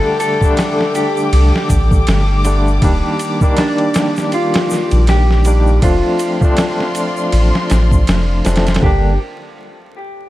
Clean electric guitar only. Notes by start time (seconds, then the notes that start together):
Already playing: A4
0.20 A4
0.95 G4
3.59 D4
4.34 F4
5.09 G4
5.83 F4
8.84 G4